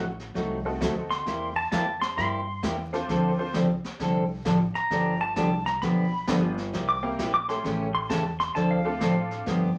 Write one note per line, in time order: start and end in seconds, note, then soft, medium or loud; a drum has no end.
0.00 0.34 A1 medium
0.20 snare soft
0.34 0.80 C2 medium
0.34 0.57 C3 medium
0.34 0.57 F#3 medium
0.34 0.58 A3 medium
0.34 0.58 D#4 medium
0.34 0.58 F#4 medium
0.34 brush sweep medium
0.34 kick soft
0.34 snare soft
0.65 1.23 A3 medium
0.65 1.23 C4 medium
0.65 1.24 D#4 medium
0.65 1.24 F#4 medium
0.65 1.24 A4 medium
0.81 1.25 D2 loud
0.81 0.93 C3 medium
0.81 0.93 F#3 medium
0.81 0.93 A3 medium
0.81 0.93 D#4 medium
0.81 0.93 F#4 medium
0.81 kick soft
0.81 snare medium
0.81 hi-hat pedal medium
1.10 1.55 C6 medium
1.10 snare soft
1.26 1.71 E2 medium
1.26 1.49 C3 medium
1.26 1.49 G3 medium
1.26 1.49 A#3 medium
1.26 1.49 E4 medium
1.26 1.49 G4 medium
1.26 brush sweep medium
1.26 kick soft
1.26 snare soft
1.56 1.70 A5 loud
1.72 2.16 F2 medium
1.72 1.84 C3 medium
1.72 1.84 G3 medium
1.72 1.84 A#3 medium
1.72 1.84 E4 medium
1.72 1.84 G4 medium
1.72 2.01 A5 loud
1.72 kick soft
1.72 snare medium
1.72 hi-hat pedal medium
2.02 2.17 C6 loud
2.02 snare soft
2.17 2.62 G2 medium
2.17 2.40 C3 medium
2.17 2.40 G3 medium
2.17 2.40 A#3 medium
2.17 2.40 E4 medium
2.17 2.40 G4 medium
2.17 2.62 C6 loud
2.17 brush sweep soft
2.17 kick soft
2.17 snare soft
2.63 3.07 E2 loud
2.63 2.75 C3 medium
2.63 2.75 G3 medium
2.63 2.75 A#3 medium
2.63 2.75 E4 medium
2.63 2.75 G4 medium
2.63 kick soft
2.63 snare medium
2.63 hi-hat pedal medium
2.93 3.37 C4 medium
2.93 3.37 D4 medium
2.93 3.37 F4 medium
2.93 3.37 A4 medium
2.93 3.38 C5 medium
2.93 snare soft
3.09 3.53 D2 medium
3.09 3.31 D3 medium
3.09 3.31 F3 medium
3.09 3.32 C4 medium
3.09 3.32 D4 medium
3.09 3.32 A4 medium
3.09 brush sweep medium
3.09 kick soft
3.09 snare soft
3.38 3.53 C4 medium
3.38 3.53 D4 medium
3.38 3.53 F4 medium
3.38 3.53 A4 medium
3.38 3.53 C5 medium
3.53 3.82 C#2 medium
3.53 3.66 D3 medium
3.53 3.66 F3 medium
3.53 3.66 C4 medium
3.53 3.66 D4 medium
3.53 3.66 A4 medium
3.53 kick soft
3.53 snare medium
3.53 hi-hat pedal medium
3.84 muted upright bass stroke soft
3.84 snare soft
4.00 4.44 C2 medium
4.00 4.22 D3 medium
4.00 4.23 F3 medium
4.00 4.23 C4 medium
4.00 4.23 D4 medium
4.00 4.23 A4 medium
4.00 brush sweep soft
4.00 kick soft
4.00 snare soft
4.45 4.73 A1 medium
4.45 4.57 D3 medium
4.45 4.57 F3 medium
4.45 4.58 C4 medium
4.45 4.58 D4 medium
4.45 4.58 A4 medium
4.45 kick soft
4.45 snare medium
4.45 hi-hat pedal medium
4.75 5.20 A#5 medium
4.75 muted upright bass stroke soft
4.75 snare soft
4.90 5.35 G1 medium
4.90 5.13 D3 medium
4.90 5.13 F3 medium
4.90 5.14 B3 medium
4.90 5.14 D4 medium
4.90 5.14 G4 medium
4.90 brush sweep medium
4.90 kick soft
4.90 snare soft
5.21 5.35 A5 medium
5.36 5.80 C2 medium
5.36 5.48 D3 medium
5.36 5.49 F3 medium
5.36 5.49 B3 medium
5.36 5.49 D4 medium
5.36 5.49 G4 medium
5.36 5.66 A5 medium
5.36 kick soft
5.36 snare medium
5.36 hi-hat pedal medium
5.66 5.81 A#5 medium
5.66 snare soft
5.82 6.26 B1 medium
5.82 6.05 D3 medium
5.82 6.05 F3 medium
5.82 6.05 B3 medium
5.82 6.05 D4 medium
5.82 6.05 G4 medium
5.82 6.26 B5 loud
5.82 brush sweep medium
5.82 kick soft
5.82 snare soft
6.27 6.72 G1 loud
6.27 6.40 D3 medium
6.27 6.40 F3 medium
6.27 6.55 B3 medium
6.27 6.40 B3 medium
6.27 6.55 D4 medium
6.27 6.40 D4 medium
6.27 6.55 F4 medium
6.27 6.55 G4 medium
6.27 6.40 G4 medium
6.27 6.55 B4 medium
6.27 kick soft
6.27 snare medium
6.27 hi-hat pedal medium
6.58 snare soft
6.73 7.17 C2 medium
6.73 6.96 C3 medium
6.73 6.96 G3 medium
6.73 6.96 A#3 medium
6.73 6.96 E4 medium
6.73 6.96 G4 medium
6.73 brush sweep soft
6.73 kick soft
6.73 snare soft
6.89 7.03 D6 loud
7.03 7.17 A#3 medium
7.03 7.17 C4 medium
7.03 7.17 E4 medium
7.03 7.17 G4 medium
7.03 7.17 A#4 medium
7.18 7.63 A#1 medium
7.18 7.30 C3 medium
7.18 7.31 G3 medium
7.18 7.31 A#3 medium
7.18 7.31 E4 medium
7.18 7.31 G4 medium
7.18 kick soft
7.18 snare medium
7.18 hi-hat pedal medium
7.34 7.48 D6 medium
7.48 8.07 A3 medium
7.48 8.07 C#4 medium
7.48 8.07 E4 medium
7.48 8.07 G4 medium
7.48 8.07 A4 medium
7.48 7.64 C6 loud
7.48 snare soft
7.64 8.08 A1 medium
7.64 7.87 C#3 medium
7.64 7.87 E3 medium
7.64 7.87 A3 medium
7.64 7.87 C#4 medium
7.64 7.87 G4 medium
7.64 brush sweep soft
7.64 kick soft
7.64 snare soft
7.95 8.09 C6 medium
8.09 8.54 E2 loud
8.09 8.21 C#3 medium
8.09 8.22 E3 medium
8.09 8.22 A3 medium
8.09 8.22 C#4 medium
8.09 8.22 G4 medium
8.09 8.25 A5 loud
8.09 kick soft
8.09 snare medium
8.09 hi-hat pedal medium
8.40 8.55 C6 medium
8.40 snare soft
8.55 9.00 D2 medium
8.55 8.77 D3 medium
8.55 8.78 F3 medium
8.55 8.78 C4 medium
8.55 8.78 D4 medium
8.55 8.78 A4 medium
8.55 8.70 A5 loud
8.55 brush sweep soft
8.55 kick soft
8.55 snare soft
8.71 9.59 F5 loud
8.85 9.43 A3 medium
8.85 9.43 C4 medium
8.85 9.43 D4 medium
8.85 9.43 F4 medium
8.85 9.44 A4 medium
9.00 9.45 A2 medium
9.00 9.12 D3 medium
9.00 9.12 F3 medium
9.00 9.13 C4 medium
9.00 9.13 D4 medium
9.00 9.13 A4 medium
9.00 kick soft
9.00 snare medium
9.00 hi-hat pedal medium
9.31 snare soft
9.46 9.74 G2 medium
9.46 9.68 D3 medium
9.46 9.69 F3 medium
9.46 9.69 B3 medium
9.46 9.69 D4 medium
9.46 9.69 G4 medium
9.46 brush sweep medium
9.46 kick soft
9.46 snare soft